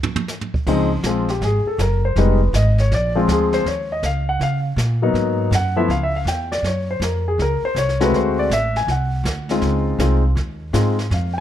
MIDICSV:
0, 0, Header, 1, 5, 480
1, 0, Start_track
1, 0, Key_signature, -5, "major"
1, 0, Tempo, 372902
1, 857, Time_signature, 4, 2, 24, 8
1, 14675, End_track
2, 0, Start_track
2, 0, Title_t, "Grand piano"
2, 0, Program_c, 0, 0
2, 867, Note_on_c, 0, 53, 73
2, 875, Note_on_c, 0, 56, 70
2, 879, Note_on_c, 0, 60, 69
2, 881, Note_on_c, 0, 63, 79
2, 1146, Note_off_c, 0, 53, 0
2, 1150, Note_off_c, 0, 56, 0
2, 1152, Note_off_c, 0, 60, 0
2, 1153, Note_off_c, 0, 63, 0
2, 1361, Note_on_c, 0, 56, 55
2, 1364, Note_on_c, 0, 53, 62
2, 1368, Note_on_c, 0, 60, 58
2, 1376, Note_on_c, 0, 65, 67
2, 1634, Note_off_c, 0, 56, 0
2, 1635, Note_off_c, 0, 53, 0
2, 1637, Note_off_c, 0, 60, 0
2, 1641, Note_off_c, 0, 65, 0
2, 1674, Note_on_c, 0, 67, 66
2, 1824, Note_off_c, 0, 67, 0
2, 1860, Note_on_c, 0, 68, 72
2, 2146, Note_off_c, 0, 68, 0
2, 2152, Note_on_c, 0, 69, 70
2, 2304, Note_off_c, 0, 69, 0
2, 2334, Note_on_c, 0, 70, 71
2, 2624, Note_off_c, 0, 70, 0
2, 2639, Note_on_c, 0, 72, 81
2, 2788, Note_off_c, 0, 72, 0
2, 2800, Note_on_c, 0, 55, 66
2, 2801, Note_on_c, 0, 56, 62
2, 2802, Note_on_c, 0, 59, 66
2, 2807, Note_on_c, 0, 63, 79
2, 2816, Note_on_c, 0, 71, 68
2, 3074, Note_off_c, 0, 55, 0
2, 3075, Note_off_c, 0, 56, 0
2, 3075, Note_off_c, 0, 59, 0
2, 3078, Note_off_c, 0, 63, 0
2, 3247, Note_off_c, 0, 71, 0
2, 3294, Note_on_c, 0, 75, 85
2, 3584, Note_off_c, 0, 75, 0
2, 3608, Note_on_c, 0, 73, 76
2, 3753, Note_off_c, 0, 73, 0
2, 3789, Note_on_c, 0, 74, 87
2, 4060, Note_on_c, 0, 53, 76
2, 4069, Note_on_c, 0, 56, 72
2, 4070, Note_on_c, 0, 60, 72
2, 4073, Note_off_c, 0, 74, 0
2, 4074, Note_on_c, 0, 65, 79
2, 4270, Note_on_c, 0, 68, 81
2, 4553, Note_off_c, 0, 68, 0
2, 4555, Note_on_c, 0, 72, 93
2, 4672, Note_off_c, 0, 53, 0
2, 4676, Note_off_c, 0, 56, 0
2, 4677, Note_off_c, 0, 60, 0
2, 4679, Note_off_c, 0, 65, 0
2, 4707, Note_off_c, 0, 72, 0
2, 4741, Note_on_c, 0, 73, 69
2, 5029, Note_off_c, 0, 73, 0
2, 5049, Note_on_c, 0, 75, 87
2, 5195, Note_off_c, 0, 75, 0
2, 5222, Note_on_c, 0, 77, 92
2, 5509, Note_off_c, 0, 77, 0
2, 5521, Note_on_c, 0, 78, 92
2, 5671, Note_off_c, 0, 78, 0
2, 5700, Note_on_c, 0, 77, 86
2, 5879, Note_off_c, 0, 77, 0
2, 6465, Note_on_c, 0, 54, 75
2, 6471, Note_on_c, 0, 58, 74
2, 6473, Note_on_c, 0, 59, 68
2, 6477, Note_on_c, 0, 63, 88
2, 7074, Note_off_c, 0, 54, 0
2, 7078, Note_off_c, 0, 58, 0
2, 7079, Note_off_c, 0, 59, 0
2, 7080, Note_off_c, 0, 63, 0
2, 7145, Note_on_c, 0, 78, 91
2, 7419, Note_on_c, 0, 53, 74
2, 7428, Note_on_c, 0, 76, 85
2, 7429, Note_on_c, 0, 57, 65
2, 7429, Note_on_c, 0, 64, 78
2, 7430, Note_on_c, 0, 59, 68
2, 7431, Note_off_c, 0, 78, 0
2, 7568, Note_off_c, 0, 53, 0
2, 7573, Note_off_c, 0, 57, 0
2, 7573, Note_off_c, 0, 59, 0
2, 7573, Note_off_c, 0, 64, 0
2, 7584, Note_off_c, 0, 76, 0
2, 7607, Note_on_c, 0, 77, 92
2, 7752, Note_off_c, 0, 77, 0
2, 7767, Note_on_c, 0, 76, 75
2, 7911, Note_off_c, 0, 76, 0
2, 7933, Note_on_c, 0, 77, 78
2, 8074, Note_off_c, 0, 77, 0
2, 8086, Note_on_c, 0, 79, 79
2, 8381, Note_off_c, 0, 79, 0
2, 8389, Note_on_c, 0, 74, 82
2, 8544, Note_off_c, 0, 74, 0
2, 8583, Note_on_c, 0, 73, 66
2, 8870, Note_off_c, 0, 73, 0
2, 8890, Note_on_c, 0, 72, 79
2, 9035, Note_off_c, 0, 72, 0
2, 9060, Note_on_c, 0, 70, 62
2, 9348, Note_off_c, 0, 70, 0
2, 9369, Note_on_c, 0, 68, 72
2, 9514, Note_off_c, 0, 68, 0
2, 9550, Note_on_c, 0, 70, 79
2, 9833, Note_off_c, 0, 70, 0
2, 9847, Note_on_c, 0, 72, 95
2, 9993, Note_off_c, 0, 72, 0
2, 10017, Note_on_c, 0, 73, 87
2, 10302, Note_on_c, 0, 56, 74
2, 10305, Note_on_c, 0, 57, 73
2, 10306, Note_off_c, 0, 73, 0
2, 10309, Note_on_c, 0, 60, 67
2, 10311, Note_on_c, 0, 66, 83
2, 10325, Note_on_c, 0, 71, 81
2, 10472, Note_off_c, 0, 71, 0
2, 10506, Note_on_c, 0, 72, 69
2, 10790, Note_off_c, 0, 72, 0
2, 10801, Note_on_c, 0, 74, 89
2, 10911, Note_off_c, 0, 56, 0
2, 10913, Note_off_c, 0, 57, 0
2, 10915, Note_off_c, 0, 60, 0
2, 10916, Note_off_c, 0, 66, 0
2, 10949, Note_off_c, 0, 74, 0
2, 10979, Note_on_c, 0, 76, 87
2, 11267, Note_off_c, 0, 76, 0
2, 11285, Note_on_c, 0, 80, 86
2, 11431, Note_off_c, 0, 80, 0
2, 11473, Note_on_c, 0, 78, 72
2, 12190, Note_off_c, 0, 78, 0
2, 12234, Note_on_c, 0, 56, 69
2, 12240, Note_on_c, 0, 63, 59
2, 12242, Note_on_c, 0, 60, 61
2, 12242, Note_on_c, 0, 65, 75
2, 12836, Note_off_c, 0, 56, 0
2, 12839, Note_off_c, 0, 63, 0
2, 12840, Note_off_c, 0, 60, 0
2, 12840, Note_off_c, 0, 65, 0
2, 12869, Note_on_c, 0, 60, 59
2, 12870, Note_on_c, 0, 63, 58
2, 12873, Note_on_c, 0, 56, 62
2, 12881, Note_on_c, 0, 65, 69
2, 13148, Note_off_c, 0, 60, 0
2, 13148, Note_off_c, 0, 63, 0
2, 13149, Note_off_c, 0, 56, 0
2, 13153, Note_off_c, 0, 65, 0
2, 13816, Note_on_c, 0, 60, 57
2, 13817, Note_on_c, 0, 56, 70
2, 13822, Note_on_c, 0, 65, 64
2, 13825, Note_on_c, 0, 63, 61
2, 14100, Note_off_c, 0, 60, 0
2, 14101, Note_off_c, 0, 56, 0
2, 14103, Note_off_c, 0, 65, 0
2, 14105, Note_off_c, 0, 63, 0
2, 14339, Note_on_c, 0, 77, 66
2, 14591, Note_on_c, 0, 79, 63
2, 14611, Note_off_c, 0, 79, 0
2, 14624, Note_off_c, 0, 77, 0
2, 14675, End_track
3, 0, Start_track
3, 0, Title_t, "Upright bass"
3, 0, Program_c, 1, 32
3, 855, Note_on_c, 1, 37, 85
3, 1317, Note_off_c, 1, 37, 0
3, 1325, Note_on_c, 1, 34, 79
3, 1797, Note_off_c, 1, 34, 0
3, 1816, Note_on_c, 1, 32, 88
3, 2111, Note_off_c, 1, 32, 0
3, 2294, Note_on_c, 1, 30, 89
3, 2763, Note_off_c, 1, 30, 0
3, 2776, Note_on_c, 1, 29, 87
3, 3245, Note_off_c, 1, 29, 0
3, 3256, Note_on_c, 1, 32, 87
3, 3725, Note_off_c, 1, 32, 0
3, 3739, Note_on_c, 1, 34, 82
3, 4207, Note_off_c, 1, 34, 0
3, 4215, Note_on_c, 1, 38, 88
3, 4685, Note_off_c, 1, 38, 0
3, 4690, Note_on_c, 1, 39, 86
3, 5163, Note_off_c, 1, 39, 0
3, 5182, Note_on_c, 1, 37, 79
3, 5649, Note_off_c, 1, 37, 0
3, 5655, Note_on_c, 1, 49, 81
3, 6126, Note_off_c, 1, 49, 0
3, 6132, Note_on_c, 1, 46, 97
3, 6604, Note_off_c, 1, 46, 0
3, 6612, Note_on_c, 1, 44, 84
3, 7084, Note_off_c, 1, 44, 0
3, 7090, Note_on_c, 1, 42, 87
3, 7563, Note_off_c, 1, 42, 0
3, 7572, Note_on_c, 1, 37, 79
3, 8038, Note_off_c, 1, 37, 0
3, 8045, Note_on_c, 1, 40, 87
3, 8517, Note_off_c, 1, 40, 0
3, 8525, Note_on_c, 1, 42, 79
3, 9000, Note_off_c, 1, 42, 0
3, 9007, Note_on_c, 1, 41, 84
3, 9480, Note_off_c, 1, 41, 0
3, 9499, Note_on_c, 1, 37, 77
3, 9794, Note_off_c, 1, 37, 0
3, 9973, Note_on_c, 1, 36, 86
3, 10438, Note_off_c, 1, 36, 0
3, 10446, Note_on_c, 1, 38, 88
3, 10919, Note_off_c, 1, 38, 0
3, 10932, Note_on_c, 1, 33, 84
3, 11402, Note_off_c, 1, 33, 0
3, 11416, Note_on_c, 1, 36, 78
3, 11884, Note_off_c, 1, 36, 0
3, 11890, Note_on_c, 1, 38, 98
3, 12360, Note_off_c, 1, 38, 0
3, 12366, Note_on_c, 1, 37, 84
3, 12838, Note_off_c, 1, 37, 0
3, 12853, Note_on_c, 1, 36, 87
3, 13321, Note_off_c, 1, 36, 0
3, 13328, Note_on_c, 1, 39, 84
3, 13798, Note_off_c, 1, 39, 0
3, 13815, Note_on_c, 1, 44, 94
3, 14281, Note_off_c, 1, 44, 0
3, 14293, Note_on_c, 1, 41, 84
3, 14675, Note_off_c, 1, 41, 0
3, 14675, End_track
4, 0, Start_track
4, 0, Title_t, "Muted upright bass strokes"
4, 2126, Note_on_c, 9, 29, 41
4, 2255, Note_off_c, 9, 29, 0
4, 9811, Note_on_c, 9, 29, 39
4, 9940, Note_off_c, 9, 29, 0
4, 14675, End_track
5, 0, Start_track
5, 0, Title_t, "Drums"
5, 42, Note_on_c, 9, 43, 113
5, 171, Note_off_c, 9, 43, 0
5, 204, Note_on_c, 9, 43, 114
5, 333, Note_off_c, 9, 43, 0
5, 363, Note_on_c, 9, 38, 45
5, 363, Note_on_c, 9, 44, 65
5, 492, Note_off_c, 9, 38, 0
5, 492, Note_off_c, 9, 44, 0
5, 531, Note_on_c, 9, 43, 60
5, 660, Note_off_c, 9, 43, 0
5, 697, Note_on_c, 9, 36, 93
5, 826, Note_off_c, 9, 36, 0
5, 858, Note_on_c, 9, 25, 40
5, 858, Note_on_c, 9, 36, 64
5, 858, Note_on_c, 9, 38, 37
5, 858, Note_on_c, 9, 49, 59
5, 987, Note_off_c, 9, 36, 0
5, 987, Note_off_c, 9, 38, 0
5, 987, Note_off_c, 9, 49, 0
5, 1333, Note_on_c, 9, 38, 62
5, 1333, Note_on_c, 9, 44, 65
5, 1461, Note_off_c, 9, 38, 0
5, 1461, Note_off_c, 9, 44, 0
5, 1655, Note_on_c, 9, 38, 38
5, 1784, Note_off_c, 9, 38, 0
5, 1823, Note_off_c, 9, 25, 0
5, 1823, Note_on_c, 9, 25, 48
5, 1823, Note_on_c, 9, 38, 43
5, 1951, Note_off_c, 9, 38, 0
5, 2306, Note_on_c, 9, 38, 62
5, 2306, Note_on_c, 9, 44, 61
5, 2434, Note_off_c, 9, 38, 0
5, 2434, Note_off_c, 9, 44, 0
5, 2784, Note_off_c, 9, 25, 0
5, 2784, Note_on_c, 9, 25, 40
5, 2784, Note_on_c, 9, 38, 42
5, 2912, Note_off_c, 9, 38, 0
5, 3268, Note_on_c, 9, 38, 64
5, 3268, Note_on_c, 9, 44, 64
5, 3397, Note_off_c, 9, 38, 0
5, 3397, Note_off_c, 9, 44, 0
5, 3582, Note_on_c, 9, 38, 39
5, 3711, Note_off_c, 9, 38, 0
5, 3753, Note_off_c, 9, 25, 0
5, 3753, Note_on_c, 9, 25, 45
5, 3753, Note_on_c, 9, 38, 44
5, 3881, Note_off_c, 9, 38, 0
5, 4230, Note_on_c, 9, 38, 62
5, 4230, Note_on_c, 9, 44, 56
5, 4359, Note_off_c, 9, 38, 0
5, 4359, Note_off_c, 9, 44, 0
5, 4539, Note_on_c, 9, 38, 42
5, 4668, Note_off_c, 9, 38, 0
5, 4716, Note_off_c, 9, 25, 0
5, 4716, Note_on_c, 9, 25, 42
5, 4716, Note_on_c, 9, 38, 42
5, 4844, Note_off_c, 9, 38, 0
5, 5188, Note_on_c, 9, 38, 60
5, 5188, Note_on_c, 9, 44, 55
5, 5317, Note_off_c, 9, 38, 0
5, 5317, Note_off_c, 9, 44, 0
5, 5674, Note_off_c, 9, 25, 0
5, 5674, Note_on_c, 9, 25, 42
5, 5674, Note_on_c, 9, 38, 43
5, 5803, Note_off_c, 9, 38, 0
5, 6153, Note_on_c, 9, 38, 63
5, 6153, Note_on_c, 9, 44, 68
5, 6282, Note_off_c, 9, 38, 0
5, 6282, Note_off_c, 9, 44, 0
5, 6630, Note_off_c, 9, 25, 0
5, 6630, Note_on_c, 9, 25, 40
5, 6630, Note_on_c, 9, 38, 42
5, 6759, Note_off_c, 9, 38, 0
5, 7109, Note_on_c, 9, 38, 66
5, 7109, Note_on_c, 9, 44, 62
5, 7238, Note_off_c, 9, 38, 0
5, 7238, Note_off_c, 9, 44, 0
5, 7593, Note_off_c, 9, 25, 0
5, 7593, Note_on_c, 9, 25, 52
5, 7593, Note_on_c, 9, 38, 40
5, 7722, Note_off_c, 9, 38, 0
5, 8071, Note_on_c, 9, 38, 59
5, 8071, Note_on_c, 9, 44, 51
5, 8200, Note_off_c, 9, 38, 0
5, 8200, Note_off_c, 9, 44, 0
5, 8393, Note_on_c, 9, 38, 43
5, 8522, Note_off_c, 9, 38, 0
5, 8550, Note_off_c, 9, 25, 0
5, 8550, Note_on_c, 9, 25, 40
5, 8550, Note_on_c, 9, 38, 41
5, 8679, Note_off_c, 9, 38, 0
5, 9034, Note_on_c, 9, 38, 69
5, 9034, Note_on_c, 9, 44, 65
5, 9162, Note_off_c, 9, 38, 0
5, 9162, Note_off_c, 9, 44, 0
5, 9516, Note_off_c, 9, 25, 0
5, 9516, Note_on_c, 9, 25, 51
5, 9516, Note_on_c, 9, 38, 44
5, 9644, Note_off_c, 9, 38, 0
5, 9992, Note_on_c, 9, 38, 63
5, 9992, Note_on_c, 9, 44, 62
5, 10120, Note_off_c, 9, 38, 0
5, 10120, Note_off_c, 9, 44, 0
5, 10153, Note_on_c, 9, 38, 31
5, 10282, Note_off_c, 9, 38, 0
5, 10306, Note_on_c, 9, 38, 42
5, 10318, Note_off_c, 9, 38, 0
5, 10318, Note_on_c, 9, 38, 51
5, 10447, Note_off_c, 9, 38, 0
5, 10478, Note_off_c, 9, 25, 0
5, 10478, Note_on_c, 9, 25, 41
5, 10478, Note_on_c, 9, 38, 42
5, 10607, Note_off_c, 9, 38, 0
5, 10959, Note_on_c, 9, 38, 64
5, 10959, Note_on_c, 9, 44, 59
5, 11088, Note_off_c, 9, 38, 0
5, 11088, Note_off_c, 9, 44, 0
5, 11276, Note_on_c, 9, 38, 41
5, 11405, Note_off_c, 9, 38, 0
5, 11432, Note_off_c, 9, 25, 0
5, 11432, Note_on_c, 9, 25, 41
5, 11432, Note_on_c, 9, 38, 44
5, 11561, Note_off_c, 9, 38, 0
5, 11911, Note_on_c, 9, 38, 61
5, 11911, Note_on_c, 9, 44, 58
5, 12039, Note_off_c, 9, 38, 0
5, 12039, Note_off_c, 9, 44, 0
5, 12217, Note_on_c, 9, 38, 42
5, 12346, Note_off_c, 9, 38, 0
5, 12376, Note_off_c, 9, 25, 0
5, 12376, Note_on_c, 9, 25, 43
5, 12376, Note_on_c, 9, 38, 41
5, 12505, Note_off_c, 9, 38, 0
5, 12867, Note_on_c, 9, 38, 71
5, 12867, Note_on_c, 9, 44, 61
5, 12995, Note_off_c, 9, 38, 0
5, 12995, Note_off_c, 9, 44, 0
5, 13343, Note_off_c, 9, 25, 0
5, 13343, Note_on_c, 9, 25, 49
5, 13343, Note_on_c, 9, 38, 46
5, 13472, Note_off_c, 9, 38, 0
5, 13823, Note_on_c, 9, 38, 59
5, 13823, Note_on_c, 9, 44, 58
5, 13952, Note_off_c, 9, 38, 0
5, 13952, Note_off_c, 9, 44, 0
5, 14144, Note_on_c, 9, 38, 42
5, 14273, Note_off_c, 9, 38, 0
5, 14302, Note_off_c, 9, 25, 0
5, 14302, Note_on_c, 9, 25, 44
5, 14302, Note_on_c, 9, 38, 41
5, 14431, Note_off_c, 9, 38, 0
5, 14675, Note_off_c, 9, 25, 0
5, 14675, End_track
0, 0, End_of_file